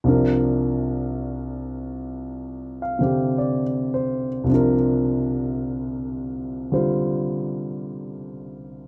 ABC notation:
X:1
M:4/4
L:1/16
Q:"Swing" 1/4=54
K:Cmix
V:1 name="Grand piano"
z8 z2 f2 d2 c2- | c z12 z3 |]
V:2 name="Grand piano" clef=bass
[C,,C,F,DB]8- [C,,C,F,DB]2 [C,D,CG]6 | [C,,C,F,DB]8 [D,G,Fc]8 |]